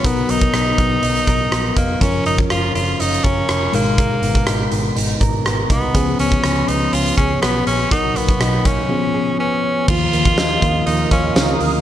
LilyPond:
<<
  \new Staff \with { instrumentName = "Analog synth pad" } { \time 4/4 \key dis \minor \tempo 4 = 122 r1 | r1 | r1 | r1 |
r1 | <ais' dis'' eis'' dis'''>1 | }
  \new Staff \with { instrumentName = "Clean electric guitar" } { \time 4/4 \key dis \minor <fis ais'>8 b8 dis'8 b8 dis'8 ais'8 b8 dis'8 | <eis ais'>8 cis'8 eis'8 cis'8 eis'8 ais'8 cis'8 gis8 | <gis ais'>8 b8 dis'8 b8 dis'8 ais'8 b8 dis'8 | <eis gis'>8 b8 cis'8 b8 cis'8 gis'8 b8 cis'8 |
<fis fis'>8 ais8 dis'8 ais8 eis8 gis'8 b8 cis'8 | eis8 ais8 dis'8 eis'8 ais8 eis'8 dis'8 ais8 | }
  \new Staff \with { instrumentName = "Tenor saxophone" } { \time 4/4 \key dis \minor b8 dis'2. ais8 | cis'8 dis'8 eis'8 eis'8 dis'8 cis'4 ais8~ | ais4. r2 b8~ | b8 cis'4 dis'8 eis'8 cis'8 b8 cis'8 |
dis'8 b4 cis'4. cis'4 | eis'2 dis'8 cis'4 r8 | }
  \new Staff \with { instrumentName = "Tine electric piano" } { \time 4/4 \key dis \minor <fis b dis' ais'>1 | <eis cis' eis' ais'>2.~ <eis cis' eis' ais'>8 <b, gis dis' ais'>8~ | <b, gis dis' ais'>2.~ <b, gis dis' ais'>8 r8 | <eis b cis' gis'>1 |
<b, fis dis' ais'>2 <eis b cis' gis'>2 | <dis eis ais eis'>1 | }
  \new Staff \with { instrumentName = "Picked electric bass" } { \clef bass \time 4/4 \key dis \minor b,,8 b,,8 b,,8 b,,8 b,,8 b,,8 ais,,8 eis,,8 | fis,,8 fis,,8 fis,,8 fis,,8 fis,,8 fis,,8 eis,,8 gis,,8~ | gis,,8 gis,,8 gis,,8 gis,,8 gis,,8 gis,,8 gis,,8 bis,,8 | cis,8 cis,8 cis,8 cis,8 cis,8 cis,8 b,,8 ais,,8 |
b,,8 b,,8 b,,8 b,,8 r2 | dis,8 dis,8 dis,8 dis,8 dis,8 dis,8 cis,8 d,8 | }
  \new DrumStaff \with { instrumentName = "Drums" } \drummode { \time 4/4 <hh bd>8 hh16 <hh bd>16 <hh ss>8 <hh bd>8 hh16 hh16 <hh bd>8 <hh ss>8 <hh bd>8 | <hh bd>8 hh16 bd16 <hh ss>8 hh8 hh16 hh16 <hh bd>8 <hh ss>8 hh8 | <hh bd>8 hh16 <hh bd>16 <hh ss>8 hh8 hh8 <hh bd>8 <hh ss>8 <hh bd>8 | <hh bd>8 hh16 <hh bd>16 <hh ss>8 hh8 hh16 hh16 <hh bd>8 <hh ss>8 hh8 |
<hh bd>8 hh16 <hh bd>16 <hh ss>8 <hh bd>8 r4 r4 | <cymc bd>8 hh16 <hh bd>16 <hh sn tamb>8 <hh bd>8 hh8 <hh bd>8 <hh sn tamb>8 hho8 | }
>>